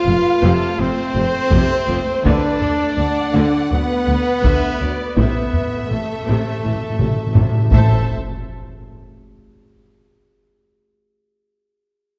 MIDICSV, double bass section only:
0, 0, Header, 1, 2, 480
1, 0, Start_track
1, 0, Key_signature, 0, "minor"
1, 0, Tempo, 729040
1, 1488, Time_signature, 4, 2, 24, 8
1, 8025, End_track
2, 0, Start_track
2, 0, Title_t, "Double bass section"
2, 0, Program_c, 0, 48
2, 47, Note_on_c, 0, 29, 61
2, 100, Note_off_c, 0, 29, 0
2, 285, Note_on_c, 0, 29, 96
2, 338, Note_off_c, 0, 29, 0
2, 528, Note_on_c, 0, 29, 73
2, 580, Note_off_c, 0, 29, 0
2, 762, Note_on_c, 0, 29, 69
2, 814, Note_off_c, 0, 29, 0
2, 999, Note_on_c, 0, 29, 105
2, 1052, Note_off_c, 0, 29, 0
2, 1245, Note_on_c, 0, 29, 64
2, 1297, Note_off_c, 0, 29, 0
2, 1485, Note_on_c, 0, 38, 96
2, 1538, Note_off_c, 0, 38, 0
2, 1963, Note_on_c, 0, 38, 55
2, 2015, Note_off_c, 0, 38, 0
2, 2206, Note_on_c, 0, 38, 84
2, 2259, Note_off_c, 0, 38, 0
2, 2445, Note_on_c, 0, 38, 69
2, 2498, Note_off_c, 0, 38, 0
2, 2686, Note_on_c, 0, 38, 59
2, 2739, Note_off_c, 0, 38, 0
2, 2929, Note_on_c, 0, 38, 80
2, 2982, Note_off_c, 0, 38, 0
2, 3171, Note_on_c, 0, 38, 51
2, 3223, Note_off_c, 0, 38, 0
2, 3416, Note_on_c, 0, 33, 69
2, 3469, Note_off_c, 0, 33, 0
2, 3889, Note_on_c, 0, 33, 45
2, 3941, Note_off_c, 0, 33, 0
2, 4135, Note_on_c, 0, 33, 63
2, 4188, Note_off_c, 0, 33, 0
2, 4378, Note_on_c, 0, 33, 55
2, 4431, Note_off_c, 0, 33, 0
2, 4610, Note_on_c, 0, 33, 45
2, 4663, Note_off_c, 0, 33, 0
2, 4853, Note_on_c, 0, 33, 77
2, 4906, Note_off_c, 0, 33, 0
2, 5086, Note_on_c, 0, 33, 77
2, 5354, Note_off_c, 0, 33, 0
2, 8025, End_track
0, 0, End_of_file